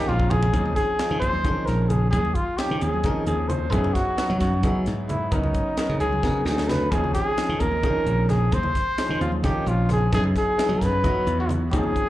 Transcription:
Already playing: F3 C4 C#4 D#4 G#4 A#4 D#5 F5 A#5
0.08 A#1 F4, low conga
0.20 kick
0.30 G#4, floor tom, low conga
0.43 floor tom
0.53 D#2 F3 C4 C#4 D#4 G#4, kick, closed hi-hat, high conga, low conga
0.66 low conga
0.75 G#4, kick, snare, closed hi-hat
0.99 F3 C4 C#4 D#4 F4, snare, closed hi-hat
1.11 D#3, low conga
1.20 D#2 C5, kick, closed hi-hat
1.33 high conga
1.44 D#3 F3 C4 C#4 D#4 G#4, kick, closed hi-hat, low conga
1.57 low conga
1.66 A#1 A#4, snare, closed hi-hat
1.89 G#4, closed hi-hat, low conga
2.11 D#2 G#4, kick, closed hi-hat, high conga, low conga
2.25 low conga
2.35 F4, kick, closed hi-hat
2.57 F3 C4 C#4 D#4 G4, snare, closed hi-hat
2.70 D#3, low conga
2.79 D#2 G#4, closed hi-hat
2.94 high conga
3.04 D#3 F3 C4 C#4 D#4 A#4, kick, closed hi-hat, low conga
3.16 low conga
3.26 D#2 G#4, closed hi-hat
3.49 C5, closed hi-hat, low conga
3.71 F#2 F#3 B3 D#4 E4 G#4, kick, closed hi-hat, high conga, low conga
3.84 low conga
3.94 F#4, kick, snare, closed hi-hat
4.17 F#3 B3 D#4 E4 F#4, snare, closed hi-hat
4.30 F#3, low conga
4.40 F#2 F#4, kick, snare, closed hi-hat
4.53 high conga
4.63 F#3 B3 D#4 E4 G#4, kick, closed hi-hat, low conga
4.75 low conga
4.86 G#2, snare, closed hi-hat
5.08 E4, closed hi-hat, low conga
5.31 C#2 F#3 B3 C#4 D#4 A#4, kick, closed hi-hat, high conga
5.43 low conga
5.54 kick, closed hi-hat
5.77 F#3 B3 C#4 D#4 A#4, snare, closed hi-hat
5.89 C#3, low conga
6.00 C#2 G#4, closed hi-hat, low conga
6.13 high conga
6.23 C#3 F#3 B3 C#4 D#4 A#4, kick, snare, low conga
6.45 D2 G#4, snare
6.58 snare
6.68 B4, snare, low conga
6.91 D#2 F3 C4 C#4 D#4 G#4, kick, closed hi-hat, high conga, low conga
7.04 low conga
7.14 G#4, kick, snare, closed hi-hat
7.38 F3 C4 C#4 D#4 G#4, snare, closed hi-hat
7.49 D#3, low conga
7.60 D#2 A#4, kick, closed hi-hat
7.71 high conga
7.83 D#3 F3 C4 C#4 D#4 G#4, kick, closed hi-hat, low conga
7.95 low conga
8.06 A#1, closed hi-hat
8.29 G#4, snare, closed hi-hat, low conga
8.52 D#2 C5, kick, closed hi-hat, high conga, low conga
8.63 low conga
8.75 kick, snare, closed hi-hat
8.98 F3 C4 C#4 D#4 G#4, snare, closed hi-hat
9.09 D#3, low conga
9.21 D#2 F4, closed hi-hat
9.32 high conga
9.43 D#3 F3 C4 C#4 D#4 F4 G4, kick, snare, closed hi-hat, low conga
9.55 low conga
9.66 A#1 F4, closed hi-hat
9.89 G#4, snare, closed hi-hat, low conga
10.12 F#2 F#3 B3 D#4 E4 G#4, kick, closed hi-hat, high conga, low conga
10.24 low conga
10.36 G#4, kick, snare, closed hi-hat
10.58 F#3 B3 D#4 E4 G#4, snare, closed hi-hat
10.69 F#3, low conga
10.81 F#2 B4, kick, snare, closed hi-hat
10.92 high conga
11.03 F#3 B3 D#4 E4 F#4, kick, closed hi-hat, low conga
11.15 low conga
11.27 E2, closed hi-hat
11.40 F#4
11.49 closed hi-hat, low conga
11.71 D#2 F3 C4 C#4 D#4 G#4, kick, closed hi-hat, high conga
11.83 low conga
11.95 kick, closed hi-hat, low conga

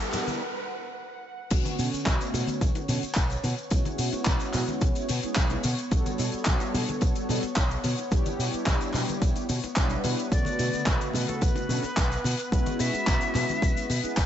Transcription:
Already playing: G3 B3 D4 E4 G4 F#5, riser
0.00 closed hi-hat, shaker
0.12 B2, clap, open hi-hat, high bongo, low conga, shaker
0.27 closed hi-hat, high conga, shaker
1.50 B1 D3 A3 B3 C#4 F#4 C#5, kick, closed hi-hat, crash, shaker
1.65 closed hi-hat, high conga, shaker
1.78 B2, open hi-hat, high bongo, shaker
1.93 muted fingered electric bass stroke, closed hi-hat, shaker
2.06 B1, kick, clap, closed hi-hat, high bongo, high conga, shaker
2.21 closed hi-hat, shaker
2.33 B2, open hi-hat, low conga, shaker
2.47 closed hi-hat, high bongo, high conga, shaker
2.61 B1, kick, closed hi-hat, shaker
2.75 closed hi-hat, high bongo, shaker
2.88 B2 D3 A3 B3 C#4 F#4, open hi-hat, high conga, low conga, shaker
3.03 muted fingered electric bass stroke, closed hi-hat, shaker
3.14 B1, kick, clap, closed hi-hat, high bongo, shaker
3.30 closed hi-hat, shaker
3.43 B2, open hi-hat, high bongo, high conga, shaker
3.57 closed hi-hat, shaker
3.70 B1 G#3 B3 C#4 E4 F#4, kick, closed hi-hat, shaker
3.85 closed hi-hat, high bongo, high conga, shaker
3.98 B2, open hi-hat, shaker
4.12 muted fingered electric bass stroke, closed hi-hat, high bongo, shaker
4.25 B1, kick, clap, closed hi-hat, high conga, shaker
4.40 closed hi-hat, shaker
4.53 B2, clap, open hi-hat, high bongo, low conga, shaker
4.68 closed hi-hat, high conga, shaker
4.81 B1, kick, closed hi-hat, high bongo, shaker
4.95 closed hi-hat, shaker
5.09 B2, open hi-hat, high conga, shaker
5.23 G#3 B3 C#4 E4 G#4, muted fingered electric bass stroke, closed hi-hat, high bongo, shaker
5.35 B1, kick, clap, closed hi-hat, shaker
5.50 closed hi-hat, high bongo, shaker
5.63 B2, open hi-hat, high conga, shaker
5.78 closed hi-hat, shaker
5.91 B1 G3 B3 D4 F#4 A4, kick, closed hi-hat, high bongo, shaker
6.06 closed hi-hat, high conga, shaker
6.18 B2, open hi-hat, high bongo, shaker
6.32 muted fingered electric bass stroke, closed hi-hat, shaker
6.45 B1, kick, clap, closed hi-hat, high conga, shaker
6.60 closed hi-hat, high bongo, shaker
6.74 B2, open hi-hat, low conga, shaker
6.88 closed hi-hat, high bongo, high conga, shaker
7.01 B1, kick, closed hi-hat, shaker
7.15 closed hi-hat, shaker
7.29 B2 G3 B3 D4 F#4 A4, open hi-hat, high bongo, high conga, low conga, shaker
7.42 muted fingered electric bass stroke, closed hi-hat, shaker
7.55 B1, kick, clap, closed hi-hat, high bongo, shaker
7.71 closed hi-hat, shaker
7.84 B2, open hi-hat, high conga, shaker
7.98 closed hi-hat, high bongo, shaker
8.10 B1 G3 B3 D4 E4 G4, kick, closed hi-hat, shaker
8.26 closed hi-hat, high bongo, high conga, shaker
8.39 B2, open hi-hat, shaker
8.53 muted fingered electric bass stroke, closed hi-hat, shaker
8.66 B1, kick, clap, closed hi-hat, high bongo, high conga, shaker
8.81 closed hi-hat, shaker
8.93 B2, clap, open hi-hat, high bongo, low conga, shaker
9.08 closed hi-hat, high conga, shaker
9.22 B1, kick, closed hi-hat, shaker
9.35 closed hi-hat, high bongo, shaker
9.49 B2, open hi-hat, high conga, shaker
9.63 muted fingered electric bass stroke, closed hi-hat, high bongo, shaker
9.76 B1 G3 B3 D4 E4 B4, kick, clap, closed hi-hat, shaker
9.90 closed hi-hat, shaker
10.04 B2, open hi-hat, high bongo, high conga, shaker
10.19 closed hi-hat, shaker
10.31 B1 C#3 D3 A3 B3 F#4 B4 D5, kick, closed hi-hat, shaker
10.45 closed hi-hat, high conga, shaker
10.59 B2, open hi-hat, high bongo, shaker
10.73 muted fingered electric bass stroke, closed hi-hat, shaker
10.86 B1 B4, kick, clap, closed hi-hat, high bongo, high conga, shaker
11.01 closed hi-hat, shaker
11.13 B2 B4, open hi-hat, low conga, shaker
11.28 A4, closed hi-hat, high bongo, high conga, shaker
11.41 B1 B4, kick, closed hi-hat, shaker
11.56 closed hi-hat, high bongo, shaker
11.69 B2 D3 A3 B3 C#4 F#4, open hi-hat, high conga, low conga, shaker
11.83 muted fingered electric bass stroke, closed hi-hat, shaker
11.97 B1, kick, clap, closed hi-hat, high bongo, shaker
12.12 closed hi-hat, shaker
12.24 B2, open hi-hat, high bongo, high conga, shaker
12.39 closed hi-hat, shaker
12.51 B1 G#3 B3 C#4 E4 F#4 B4, kick, closed hi-hat, shaker
12.66 closed hi-hat, high bongo, high conga, shaker
12.79 B2 E5, open hi-hat, shaker
12.93 muted fingered electric bass stroke, closed hi-hat, high bongo, shaker
13.07 B1, kick, clap, closed hi-hat, high conga, shaker
13.21 closed hi-hat, shaker
13.34 B2, clap, open hi-hat, high bongo, low conga, shaker
13.49 closed hi-hat, high conga, shaker
13.62 B1, kick, closed hi-hat, high bongo, shaker
13.77 closed hi-hat, shaker
13.90 B2, open hi-hat, high conga, shaker
14.03 G#3 B3 C#4 E4 G#4, muted fingered electric bass stroke, closed hi-hat, high bongo, shaker
14.17 B1, kick, clap, closed hi-hat, shaker

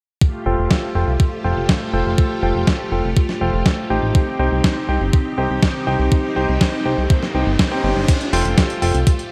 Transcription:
0.21 A3 F4 G4, kick
0.46 F1 F4 A4 C5 G5
0.58 F1
0.71 kick, snare
0.95 F1 F4 A4 C5 G5
1.08 C2
1.20 kick
1.44 F1 F4 A4 C5 G5
1.57 F1
1.69 kick, snare
1.93 F1 F4 A4 C5 G5
2.06 F1
2.18 kick
2.43 F1 F4 A4 C5 G5
2.55 F1
2.67 kick, snare
2.92 F1 F4 A4 C5 G5
3.04 F1
3.17 kick
3.29 snare
3.41 F1 F4 A4 C5 G5
3.54 F1
3.66 kick, snare
3.90 A1 D#4 G4 C5 G5
4.03 A1
4.15 C4 D#4 G4, kick, riser
4.39 C2 D#4 G4 C5 G5
4.52 C2
4.64 kick, snare
4.89 C2 D#4 G4 C5 G5
5.01 G1
5.13 kick
5.38 C2 D#4 G4 C5 G5
5.50 C2
5.63 kick, snare
5.87 C2 D#4 G4 C5 G5
5.99 C2
6.12 kick
6.36 C2 D#4 G4 C5 G5
6.49 C2
6.61 kick, snare
6.85 C2 D#4 G4 C5 G5
6.98 C2
7.10 kick
7.23 snare
7.35 C2 D#4 G4 C5 G5
7.47 G1
7.59 kick, snare
7.72 D#4 G4 C5 G5
7.84 G1 D#4 G4 C5 G5
7.96 G1
8.08 A3 F4 G4, kick, closed hi-hat, crash
8.21 closed hi-hat
8.33 F1 F4 A4 C5 G5, open hi-hat
8.45 F1, closed hi-hat
8.58 kick, snare, closed hi-hat
8.70 closed hi-hat
8.82 F1 F4 A4 C5 G5, open hi-hat
8.95 C2, closed hi-hat
9.07 kick, closed hi-hat
9.19 closed hi-hat

